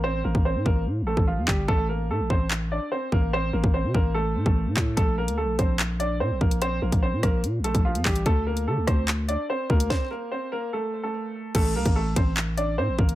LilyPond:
<<
  \new Staff \with { instrumentName = "Upright piano" } { \time 4/4 \key a \phrygian \tempo 4 = 146 <c' c''>8 <bes bes'>8 <c' c''>8 <bes bes'>8 r8 <a a'>8 <f f'>8 <g g'>8 | <a a'>8 <bes bes'>8 <a a'>8 <c' c''>8 r8 <d' d''>8 <c' c''>8 <bes bes'>8 | <c' c''>8 <bes bes'>8 <c' c''>8 <bes bes'>8 <a a'>8. <a a'>4~ <a a'>16 | <a a'>8 <bes bes'>8 <a a'>8 <c' c''>8 r8 <d' d''>8 <c' c''>8 <bes bes'>8 |
<c' c''>8 <bes bes'>8 <c' c''>8 <bes bes'>8 r8 <a a'>8 <f f'>8 <g g'>8 | <a a'>8 <bes bes'>8 <a a'>8 <c' c''>8 r8 <d' d''>8 <c' c''>8 <bes bes'>8 | <c' c''>8 <bes bes'>8 <c' c''>8 <bes bes'>8 <a a'>8. <a a'>4~ <a a'>16 | <a a'>8 <bes bes'>8 <a a'>8 <c' c''>8 r8 <d' d''>8 <c' c''>8 <bes bes'>8 | }
  \new Staff \with { instrumentName = "808-style bass" } { \clef bass \time 4/4 \key a \phrygian a,,8 a,,16 a,,8 a,16 a,,8 a,16. a,,16. a,,8 e,16 g,,8 | a,,4 a,16 a,,16 a,,4~ a,,16 r8. a,,8~ | a,,8 a,,16 a,,8 c16 a,,4 a,16 a,,8 a,16 a,8 | bes,,8. d,16. bes,,16. bes,,4. bes,16 bes,,16 bes,,8~ |
bes,,8 bes,,16 bes,,8 bes,16 bes,,8 bes,16. bes,,16. bes,,8 f,16 a,,8 | d,4 d16 d,16 d,4~ d,16 r8. d,8 | r1 | a,,8 c,16 a,,8. a,,4. a,16 a,,16 a,,8 | }
  \new DrumStaff \with { instrumentName = "Drums" } \drummode { \time 4/4 r8. bd16 r8 bd8 r8. bd16 r8 <hc bd>8 | bd4 r8 bd8 hc4 r8 bd8 | r8. bd16 r8 bd8 r8. bd16 r8 <hc bd>8 | <hh bd>8. hh16 r8 <hh bd>8 <hc hh>8 hh8 r8 bd16 hh16 |
hh8. <hh bd>16 r8 <hh bd ss>8 hh8 hh16 <hh bd>16 r16 hh16 <hc hho bd>16 hh16 | <hh bd>8. hh16 r8 <hh bd ss>8 <hc hh>8 hh8 r8 bd16 hh16 | <bd sn>4 r4 r4 r4 | <cymc hh bd>8. <hh bd>16 r8 <hh bd>8 <hc hh>8 hh8 r8 bd16 hh16 | }
>>